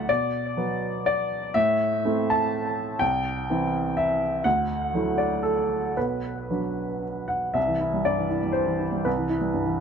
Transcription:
Already playing: D2 F#3 A3 E4 D5 E5 F#5
0.09 B2 D5
0.57 F#3 B3
1.06 D5
1.54 A2 E5
2.05 A3 C4 E4
2.30 A5
2.99 C2 G5
3.50 E3 C4 E4
3.97 E5
4.44 D2 F#5
4.94 F#3 A3 E4
5.18 D5
5.43 A4
5.97 B1 B4
6.50 F#3 B3 D4
7.28 F#5
7.54 C2 E5
7.68 E3
7.80 E4
7.94 G3
8.05 G2 D5
8.18 E3
8.30 E4
8.44 G3
8.52 C5
8.66 E3
8.80 E4
8.92 G3
9.05 C2 B4
9.17 E3
9.29 E4
9.41 G3
9.54 G2
9.66 E3

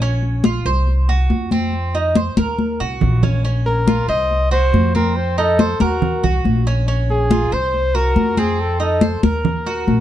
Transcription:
Already playing: A#1
0.01 C#4, high conga
0.22 high conga
0.44 F4, high conga
0.65 C2 C5, high conga
0.87 high conga
1.09 F#4, high conga
1.30 F2, high conga
1.51 C4, high conga
1.73 high conga
1.94 D#4, high conga
2.15 C5, high conga
2.37 D#2 A#4, high conga
2.59 high conga
2.80 C2 F#4
3.01 A#1, low conga
3.23 C#4, low conga
3.45 C#4, high conga
3.66 A#4, high conga
3.87 F4, high conga
4.08 C2 C5 D#5, high conga
4.31 high conga
4.51 F#4 C5, high conga
4.73 F2, high conga
4.95 C4 A#4, high conga
5.16 C5, high conga
5.38 D#4 A4, high conga
5.59 C5, high conga
5.80 D#2 F#4 A#4, high conga
6.02 high conga, low conga
6.23 C2 F#4, high conga, low conga
6.44 A#1, high conga
6.67 C#4
6.88 C#4, high conga
7.10 G#4, high conga
7.31 F4, high conga
7.52 C2 C5, high conga
7.74 high conga
7.95 F#4 A#4, high conga
8.15 F2, high conga
8.37 C4 G#4, high conga
8.59 A4, high conga
8.80 D#4 A4, high conga
9.01 C5, high conga
9.23 D#2 A#4, high conga
9.45 high conga, low conga
9.66 F#4, high conga
9.87 A#1, high conga

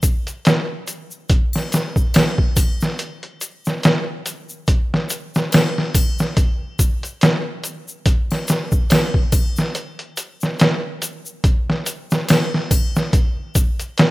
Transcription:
0.03 kick, closed hi-hat, shaker
0.27 closed hi-hat, shaker
0.45 snare, closed hi-hat, shaker
0.88 closed hi-hat, shaker
1.11 shaker
1.29 kick, closed hi-hat, shaker
1.53 snare, triangle
1.72 snare, closed hi-hat, shaker
1.96 kick, shaker
2.14 snare, closed hi-hat, triangle, shaker
2.38 kick
2.56 kick, closed hi-hat, triangle, shaker
2.81 snare, shaker
2.99 closed hi-hat, shaker
3.23 closed hi-hat
3.41 closed hi-hat, shaker
3.65 snare, shaker
3.83 snare, closed hi-hat, shaker
4.26 closed hi-hat, shaker
4.49 shaker
4.67 kick, closed hi-hat, shaker
4.94 snare
5.10 closed hi-hat, shaker
5.35 snare, shaker
5.52 snare, closed hi-hat, triangle, shaker
5.78 snare
5.94 kick, closed hi-hat, triangle, shaker
6.18 snare, shaker
6.37 kick, closed hi-hat, shaker
6.79 kick, closed hi-hat, shaker
7.03 closed hi-hat, shaker
7.21 snare, closed hi-hat, shaker
7.64 closed hi-hat, shaker
7.88 shaker
8.06 kick, closed hi-hat, shaker
8.31 snare, triangle
8.48 snare, closed hi-hat, shaker
8.72 kick, shaker
8.90 snare, closed hi-hat, triangle, shaker
9.14 kick
9.32 kick, closed hi-hat, triangle, shaker
9.56 snare, shaker
9.75 closed hi-hat, shaker
9.99 closed hi-hat
10.17 closed hi-hat, shaker
10.41 snare, shaker
10.59 snare, closed hi-hat, shaker
11.02 closed hi-hat, shaker
11.26 shaker
11.44 kick, closed hi-hat, shaker
11.70 snare
11.86 closed hi-hat, shaker
12.10 snare, shaker
12.29 snare, closed hi-hat, triangle, shaker
12.54 snare
12.71 kick, closed hi-hat, triangle, shaker
12.96 snare, shaker
13.13 kick, closed hi-hat, shaker
13.55 kick, closed hi-hat, shaker
13.79 closed hi-hat, shaker
13.98 snare, closed hi-hat, shaker

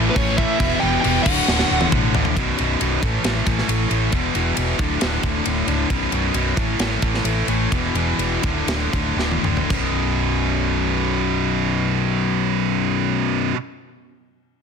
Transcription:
Already playing: A2 E3 A3
0.10 B3 B4
0.15 A1 A2 E3 A3 C#4 C#5, kick, crash
0.37 A2 E3 A3 E4 E5, kick
0.59 E1 E2 B2 E3, kick, crash
0.79 E1 E2 B2 E3 G4 G5
1.01 E1 E2 B2 E3 G4 G5, crash
1.23 D1 D2 A2 D3 F#4 F#5, kick, crash
1.48 D1 D2 A2 D3, snare
1.59 snare
1.70 D1 D2 A2 D3
1.81 high tom
1.92 A1 D2 A2 D3, kick, mid tom
2.14 D2 A2 D3, floor tom
2.25 floor tom
2.36 B0 B1 F#2 B2, kick, ride
2.58 B0 B1 F#2 B2, ride
2.79 B0 B1 F#2 B2, ride
3.02 A1 A2 E3 A3, kick, ride
3.24 A1 A2 E3 A3, snare, ride
3.46 A1 A2 E3 A3, kick, ride
3.59 snare
3.68 A1 A2 E3 A3, ride
3.90 A1 A2 E3 A3, ride
4.12 E1 E2 B2 E3, kick, ride
4.35 E1 E2 B2 E3, ride
4.57 E1 E2 B2 E3, ride
4.79 D1 D2 A2 D3, kick, ride
5.01 D1 D2 A2 D3, snare, ride
5.22 D1 D2 A2 D3, kick, ride
5.45 D1 D2 A2 D3, ride
5.67 C#1 D2 A2 D3, ride
5.89 B0 B1 F#2 B2, kick, ride
6.12 B0 B1 F#2 B2, ride
6.34 B0 B1 F#2 B2, ride
6.57 A1 A2 E3 A3, kick, ride
6.79 A1 A2 E3 A3, snare, ride
7.02 A1 A2 E3 A3, kick, ride
7.14 snare
7.24 A1 A2 E3 A3, ride
7.47 A1 A2 E3 A3, ride
7.72 E1 E2 B2 E3, kick, ride
7.94 E1 E2 B2 E3, ride
8.18 E1 E2 B2 E3, ride
8.43 D1 D2 A2 D3, kick, ride
8.67 D1 D2 A2 D3, snare, ride
8.92 D1 D2 A2 D3, kick, ride
9.16 D1 D2 A2 D3, snare
9.31 high tom
9.42 D1 D2 A2 D3, mid tom
9.57 floor tom
9.69 B0 B1 F#2, kick, splash
9.73 B2

